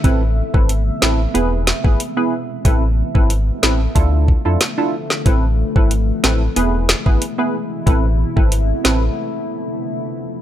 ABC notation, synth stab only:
X:1
M:4/4
L:1/16
Q:1/4=92
K:Am
V:1 name="Synth stab"
[CEAB] z2 [CEAB] z2 [CEAB] z [B,E^GB]3 [B,EGB] z [B,EGB] z2 | [CEAB] z2 [CEAB] z2 [CEAB] z [DEFA]3 [DEFA] z [DEFA] z2 | [CEAB] z2 [CEAB] z2 [CEAB] z [B,E^GB]3 [B,EGB] z [B,EGB] z2 | [CEAB] z2 [CEAB] z2 [CEAB] z8 z |]